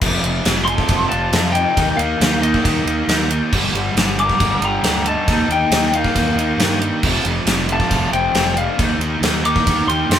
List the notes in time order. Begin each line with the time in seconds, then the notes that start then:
0.01 F1 F2 C3 F3, kick, crash
0.23 F1 F2 C3 F3, ride
0.45 F1 F2 C3 F3, snare, ride
0.65 F2 C3 A4 C6, ride
0.69 F3
0.78 kick
0.89 F1 F2 C3 F3, kick, ride
1.09 F1 F2 C3 F3 F4 A5, ride
1.32 F2 C3 F3, snare, ride
1.52 F2 C3 F3 D#4 G5, ride
1.77 D#2 D#3 A#3 D#4, kick, ride
1.96 D#2 D#3 A#3 D#4 F5, ride
2.20 D#2 D#3 A#3 D#4, snare, ride
2.41 D#3 A#3 D#4 D#5, ride
2.54 kick
2.63 D#2 D#3 A#3 D#4, kick, ride
2.86 D#2 D#3 A#3 D#4, ride
3.08 D#2 D#3 A#3 D#4, snare, ride
3.30 D#3 A#3 D#4, ride
3.52 G1 G2 D3 G3, kick, crash
3.73 G1 G2 D3 G3, ride
3.95 G1 G2 D3 G3, snare, ride
4.18 G2 D3 G3 A#4 D6, ride
4.29 kick
4.40 G1 G2 D3 G3, kick, ride
4.60 G1 G2 D3 G3, ride
4.65 G4 A#5
4.83 D2 G2 D3 G3, snare, ride
5.06 G2 D3 G3 D#4 A5, ride
5.28 D#2 D#3 A#3 D#4, kick, ride
5.48 D#2 D#3 A#3 D#4 G5, ride
5.54 D#4
5.70 D#2 D#3 A#3 D#4, snare, ride
5.93 D#3 A#3 D#4 F5, ride
5.97 A#3
6.04 kick
6.14 D#2 D#3 A#3 D#4, kick, ride
6.35 D#2 D#3 A#3 D#4
6.39 ride
6.57 G2 D#3 A#3 D#4, snare, ride
6.81 D#3 A#3 D#4, ride
7.02 F1 F2 C3 F3, kick, crash
7.23 F1 F2 C3 F3, ride
7.45 F1 F2 C3 F3, snare, ride
7.68 F2 C3 F3, ride
7.73 F4 A5
7.80 kick
7.90 F1 F2 C3 F3, kick, ride
8.12 F1 F2 C3 F3 C4 G5, ride
8.34 F1 F2 C3 F3, snare, ride
8.54 F2 C3 F3 D4 F5, ride
8.78 D#2 D#3 A#3 D#4, kick, ride
8.98 D#2 D#3 A#3 D#4, ride
9.21 D#2 D#3 A#3 D#4, snare, ride
9.44 D#3 A#3 D#4 A#4 D6, ride
9.56 kick
9.66 D#2 D#3 A#3 D#4, kick, ride
9.87 D#2 D#3 A#3 D#4 G4 C6, ride
10.09 F#2 D#3 A#3 D#4, snare, ride